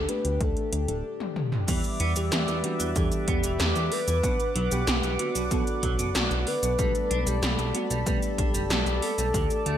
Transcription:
Already playing: analog synth pad A3 D4 G4, soft synth lead A4
0.09 fm electric piano A3 D4 G4, soft synth lead B4, closed hi-hat
0.25 analog synth bass D2, closed hi-hat
0.41 analog synth bass D2, fm electric piano A3 D4 A4, soft synth lead A4, kick, closed hi-hat
0.57 closed hi-hat
0.73 analog synth bass D2, closed hi-hat
0.88 analog synth bass D1, fm electric piano A3 D4 A4, closed hi-hat
1.20 high tom
1.36 mid tom
1.52 mid tom
1.68 analog synth bass E2, fm electric piano E3 G3 B3 D4 G4, clean electric guitar E3, analog synth pad B4 D5 E5 D6, kick, closed hi-hat, crash, cabasa
1.84 closed hi-hat, cabasa
2.00 analog synth bass E2, clean electric guitar B3, closed hi-hat
2.16 analog synth bass E2, clean electric guitar E3, soft synth lead G4, closed hi-hat, cabasa
2.32 analog synth bass E2, clean electric guitar E3, snare, closed hi-hat, cabasa
2.48 analog synth bass E2, closed hi-hat, cabasa
2.64 fm electric piano E3 G3 B3 D4 G4, clean electric guitar G3, soft synth lead F#4, closed hi-hat
2.80 analog synth bass E2, clean electric guitar E3, closed hi-hat, cabasa
2.96 analog synth bass E2, clean electric guitar E3, fm electric piano E3 G3 B3 D4 A4, soft synth lead G4, kick, closed hi-hat, cabasa
3.12 closed hi-hat, cabasa
3.28 analog synth bass E2, clean electric guitar B3, kick, closed hi-hat
3.44 analog synth bass E1, clean electric guitar E3, closed hi-hat, cabasa
3.60 analog synth bass E2, clean electric guitar E3, snare, closed hi-hat, cabasa
3.76 analog synth bass E2, closed hi-hat, cabasa
3.92 clean electric guitar G3, soft synth lead B4, open hi-hat
4.08 analog synth bass E2, clean electric guitar E3, closed hi-hat, cabasa
4.23 analog synth bass B1, clean electric guitar B2, fm electric piano B3 D4 F#5, analog synth pad D5 F#5, kick, closed hi-hat, cabasa
4.40 closed hi-hat, cabasa
4.55 analog synth bass B1, clean electric guitar F#3, closed hi-hat
4.72 analog synth bass B1, clean electric guitar B2, soft synth lead G4, closed hi-hat, cabasa
4.87 analog synth bass B1, clean electric guitar B2, snare, closed hi-hat, cabasa
5.03 analog synth bass B1, closed hi-hat, cabasa
5.19 clean electric guitar D3, fm electric piano B3 D4 F#4, soft synth lead F#4, closed hi-hat
5.35 analog synth bass B1, clean electric guitar B2, closed hi-hat, cabasa
5.51 analog synth bass B1, clean electric guitar B2, fm electric piano B3 D4 A4, soft synth lead F#4, kick, closed hi-hat, cabasa
5.67 closed hi-hat, cabasa
5.83 analog synth bass B1, clean electric guitar F#3, kick, closed hi-hat
5.99 analog synth bass F#1, clean electric guitar B2, closed hi-hat, cabasa
6.15 analog synth bass B1, clean electric guitar B2, snare, closed hi-hat, cabasa
6.31 analog synth bass B1, closed hi-hat, cabasa
6.47 clean electric guitar D3, soft synth lead B4, open hi-hat
6.63 analog synth bass B1, clean electric guitar B2, closed hi-hat, cabasa
6.79 analog synth bass B1, fm electric piano G3 A3 B3 D4 A4, clean electric guitar G3, analog synth pad A4 A5 B5, kick, closed hi-hat, cabasa
6.95 closed hi-hat, cabasa
7.11 analog synth bass B1, clean electric guitar D4, closed hi-hat
7.27 analog synth bass B1, clean electric guitar G3, soft synth lead G4, closed hi-hat, cabasa
7.43 analog synth bass B1, clean electric guitar G3, snare, closed hi-hat, cabasa
7.58 analog synth bass B1, closed hi-hat, cabasa
7.74 fm electric piano G3 A3 B3 D4 A4, clean electric guitar B3, soft synth lead F#4, closed hi-hat
7.90 analog synth bass B1, clean electric guitar G3, closed hi-hat, cabasa
8.06 analog synth bass B1, clean electric guitar G3, fm electric piano G3 A3 B3 D4 B4, soft synth lead G4, kick, closed hi-hat, cabasa
8.22 closed hi-hat, cabasa
8.38 analog synth bass B1, clean electric guitar D4, kick, closed hi-hat
8.54 analog synth bass F#1, clean electric guitar G3, closed hi-hat, cabasa
8.70 analog synth bass B1, clean electric guitar G3, snare, closed hi-hat, cabasa
8.86 analog synth bass B1, closed hi-hat, cabasa
9.02 clean electric guitar B3, soft synth lead A4, open hi-hat
9.18 analog synth bass B1, clean electric guitar G3, closed hi-hat, cabasa
9.34 analog synth bass D2, clean electric guitar D3, fm electric piano A3 D4 G4, analog synth pad D6, kick, closed hi-hat, cabasa
9.50 closed hi-hat, cabasa
9.66 analog synth bass D2, clean electric guitar A3, closed hi-hat

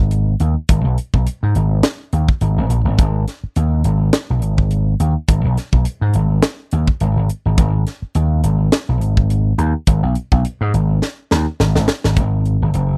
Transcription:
Already playing: slap bass G#1
0.11 closed hi-hat
0.40 slap bass D#2, closed hi-hat
0.69 slap bass G#1, kick, closed hi-hat
0.84 slap bass B1
0.98 closed hi-hat
1.14 slap bass B1, kick
1.27 closed hi-hat
1.43 slap bass G#2
1.55 slap bass G#1, closed hi-hat
1.83 snare, closed hi-hat
2.13 slap bass D#2, closed hi-hat
2.28 kick
2.41 slap bass G#1, closed hi-hat
2.57 slap bass G#1
2.70 slap bass A#1, closed hi-hat
2.85 slap bass G#1
2.99 slap bass G#1, kick, closed hi-hat
3.28 snare, closed hi-hat
3.44 muted slap bass stroke
3.56 slap bass D#2, closed hi-hat
3.84 slap bass G#1, closed hi-hat
4.13 snare, closed hi-hat
4.30 slap bass B1
4.42 slap bass G#1, closed hi-hat
4.58 kick
4.71 closed hi-hat
5.00 slap bass D#2, closed hi-hat
5.29 slap bass G#1, kick, closed hi-hat
5.44 slap bass B1
5.57 snare, closed hi-hat
5.73 slap bass B1, kick
5.85 closed hi-hat
6.01 slap bass G#2
6.14 slap bass G#1, closed hi-hat
6.42 snare, closed hi-hat
6.71 slap bass D#2, closed hi-hat
6.88 kick
7.00 slap bass G#1, closed hi-hat
7.17 slap bass G#1
7.30 closed hi-hat
7.46 slap bass G#1
7.58 slap bass G#1, kick, closed hi-hat
7.87 snare, closed hi-hat
8.02 muted slap bass stroke
8.15 slap bass D#2, closed hi-hat
8.43 slap bass G#1, closed hi-hat
8.72 snare, closed hi-hat
8.89 slap bass B1
9.01 slap bass G#1, closed hi-hat
9.17 kick
9.30 closed hi-hat
9.58 slap bass D#2, closed hi-hat
9.87 slap bass G#1, kick, closed hi-hat
10.03 slap bass B1
10.15 closed hi-hat
10.32 slap bass B1, kick
10.45 closed hi-hat
10.61 slap bass G#2
10.74 slap bass G#1, closed hi-hat
11.02 snare
11.31 slap bass D#2, snare
11.60 slap bass G#1, snare
11.76 slap bass G#1, snare
11.88 snare
12.04 slap bass G#1, snare
12.16 slap bass G#1, kick, closed hi-hat
12.46 closed hi-hat
12.62 slap bass G#1
12.74 slap bass F#1, closed hi-hat

